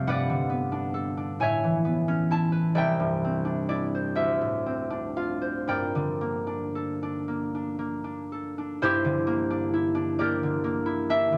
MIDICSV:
0, 0, Header, 1, 2, 480
1, 0, Start_track
1, 0, Tempo, 895522
1, 27, Time_signature, 6, 3, 24, 8
1, 1468, Tempo, 933126
1, 1948, Tempo, 978793
1, 2428, Tempo, 1054482
1, 3388, Tempo, 1016949
1, 4348, Tempo, 911854
1, 5707, End_track
2, 0, Start_track
2, 0, Title_t, "Harp"
2, 0, Program_c, 0, 46
2, 0, Note_on_c, 0, 48, 46
2, 0, Note_on_c, 0, 55, 52
2, 0, Note_on_c, 0, 57, 57
2, 0, Note_on_c, 0, 65, 54
2, 0, Note_on_c, 0, 67, 62
2, 0, Note_on_c, 0, 69, 61
2, 39, Note_on_c, 0, 43, 68
2, 41, Note_on_c, 0, 78, 82
2, 48, Note_on_c, 0, 71, 70
2, 51, Note_on_c, 0, 74, 71
2, 54, Note_off_c, 0, 48, 0
2, 55, Note_off_c, 0, 65, 0
2, 159, Note_on_c, 0, 50, 54
2, 266, Note_on_c, 0, 59, 53
2, 385, Note_on_c, 0, 62, 56
2, 497, Note_off_c, 0, 69, 0
2, 503, Note_on_c, 0, 69, 49
2, 622, Note_off_c, 0, 62, 0
2, 629, Note_on_c, 0, 62, 51
2, 750, Note_on_c, 0, 45, 58
2, 754, Note_on_c, 0, 80, 80
2, 761, Note_on_c, 0, 73, 64
2, 764, Note_off_c, 0, 62, 0
2, 764, Note_off_c, 0, 67, 0
2, 764, Note_on_c, 0, 76, 64
2, 766, Note_off_c, 0, 43, 0
2, 766, Note_off_c, 0, 50, 0
2, 766, Note_off_c, 0, 55, 0
2, 766, Note_off_c, 0, 78, 0
2, 771, Note_off_c, 0, 74, 0
2, 878, Note_on_c, 0, 52, 44
2, 984, Note_off_c, 0, 59, 0
2, 990, Note_on_c, 0, 59, 51
2, 1115, Note_on_c, 0, 61, 58
2, 1237, Note_on_c, 0, 64, 59
2, 1241, Note_on_c, 0, 81, 96
2, 1345, Note_off_c, 0, 71, 0
2, 1351, Note_on_c, 0, 71, 58
2, 1473, Note_on_c, 0, 74, 59
2, 1474, Note_off_c, 0, 76, 0
2, 1474, Note_on_c, 0, 36, 60
2, 1481, Note_on_c, 0, 76, 66
2, 1487, Note_off_c, 0, 69, 0
2, 1488, Note_off_c, 0, 71, 0
2, 1488, Note_on_c, 0, 79, 84
2, 1489, Note_off_c, 0, 57, 0
2, 1490, Note_off_c, 0, 59, 0
2, 1491, Note_off_c, 0, 45, 0
2, 1491, Note_off_c, 0, 61, 0
2, 1491, Note_off_c, 0, 80, 0
2, 1493, Note_off_c, 0, 81, 0
2, 1494, Note_off_c, 0, 52, 0
2, 1496, Note_off_c, 0, 73, 0
2, 1601, Note_on_c, 0, 43, 51
2, 1728, Note_on_c, 0, 60, 46
2, 1833, Note_on_c, 0, 62, 46
2, 1949, Note_off_c, 0, 74, 0
2, 1950, Note_off_c, 0, 64, 0
2, 1955, Note_on_c, 0, 64, 48
2, 1956, Note_on_c, 0, 74, 72
2, 2083, Note_on_c, 0, 72, 48
2, 2180, Note_off_c, 0, 76, 0
2, 2184, Note_on_c, 0, 38, 49
2, 2187, Note_on_c, 0, 76, 74
2, 2206, Note_off_c, 0, 36, 0
2, 2207, Note_off_c, 0, 64, 0
2, 2209, Note_off_c, 0, 79, 0
2, 2210, Note_off_c, 0, 43, 0
2, 2312, Note_on_c, 0, 45, 42
2, 2428, Note_off_c, 0, 60, 0
2, 2434, Note_on_c, 0, 60, 45
2, 2538, Note_off_c, 0, 62, 0
2, 2543, Note_on_c, 0, 62, 48
2, 2662, Note_on_c, 0, 65, 49
2, 2663, Note_on_c, 0, 77, 75
2, 2771, Note_off_c, 0, 72, 0
2, 2776, Note_on_c, 0, 72, 48
2, 2894, Note_off_c, 0, 74, 0
2, 2894, Note_on_c, 0, 43, 54
2, 2899, Note_on_c, 0, 74, 56
2, 2899, Note_on_c, 0, 79, 75
2, 2903, Note_on_c, 0, 70, 57
2, 2918, Note_off_c, 0, 72, 0
2, 2921, Note_off_c, 0, 38, 0
2, 2921, Note_off_c, 0, 65, 0
2, 2921, Note_off_c, 0, 77, 0
2, 2923, Note_off_c, 0, 45, 0
2, 2923, Note_off_c, 0, 60, 0
2, 2999, Note_off_c, 0, 76, 0
2, 3020, Note_on_c, 0, 50, 49
2, 3138, Note_on_c, 0, 58, 49
2, 3250, Note_off_c, 0, 62, 0
2, 3255, Note_on_c, 0, 62, 38
2, 3385, Note_on_c, 0, 69, 42
2, 3508, Note_off_c, 0, 62, 0
2, 3514, Note_on_c, 0, 62, 40
2, 3627, Note_off_c, 0, 58, 0
2, 3633, Note_on_c, 0, 58, 40
2, 3754, Note_off_c, 0, 62, 0
2, 3760, Note_on_c, 0, 62, 39
2, 3867, Note_off_c, 0, 58, 0
2, 3873, Note_on_c, 0, 58, 42
2, 3987, Note_off_c, 0, 62, 0
2, 3993, Note_on_c, 0, 62, 42
2, 4119, Note_off_c, 0, 69, 0
2, 4125, Note_on_c, 0, 69, 46
2, 4241, Note_off_c, 0, 62, 0
2, 4247, Note_on_c, 0, 62, 41
2, 4356, Note_off_c, 0, 43, 0
2, 4361, Note_on_c, 0, 43, 72
2, 4363, Note_on_c, 0, 72, 98
2, 4365, Note_off_c, 0, 50, 0
2, 4367, Note_on_c, 0, 64, 81
2, 4372, Note_on_c, 0, 67, 82
2, 4373, Note_off_c, 0, 69, 0
2, 4481, Note_on_c, 0, 50, 56
2, 4591, Note_off_c, 0, 58, 0
2, 4597, Note_on_c, 0, 58, 61
2, 4716, Note_off_c, 0, 62, 0
2, 4722, Note_on_c, 0, 62, 62
2, 4765, Note_off_c, 0, 74, 0
2, 4765, Note_off_c, 0, 79, 0
2, 4769, Note_off_c, 0, 70, 0
2, 4837, Note_off_c, 0, 64, 0
2, 4844, Note_on_c, 0, 64, 54
2, 4949, Note_off_c, 0, 62, 0
2, 4955, Note_on_c, 0, 62, 62
2, 5078, Note_off_c, 0, 58, 0
2, 5082, Note_on_c, 0, 74, 79
2, 5083, Note_off_c, 0, 67, 0
2, 5084, Note_on_c, 0, 58, 55
2, 5089, Note_on_c, 0, 67, 59
2, 5094, Note_on_c, 0, 70, 60
2, 5204, Note_off_c, 0, 50, 0
2, 5210, Note_on_c, 0, 50, 45
2, 5314, Note_off_c, 0, 58, 0
2, 5320, Note_on_c, 0, 58, 56
2, 5428, Note_off_c, 0, 64, 0
2, 5435, Note_on_c, 0, 64, 64
2, 5556, Note_off_c, 0, 62, 0
2, 5560, Note_on_c, 0, 62, 68
2, 5563, Note_on_c, 0, 76, 100
2, 5583, Note_off_c, 0, 72, 0
2, 5674, Note_off_c, 0, 50, 0
2, 5680, Note_on_c, 0, 50, 56
2, 5707, Note_off_c, 0, 43, 0
2, 5707, Note_off_c, 0, 50, 0
2, 5707, Note_off_c, 0, 58, 0
2, 5707, Note_off_c, 0, 62, 0
2, 5707, Note_off_c, 0, 64, 0
2, 5707, Note_off_c, 0, 67, 0
2, 5707, Note_off_c, 0, 70, 0
2, 5707, Note_off_c, 0, 74, 0
2, 5707, Note_off_c, 0, 76, 0
2, 5707, End_track
0, 0, End_of_file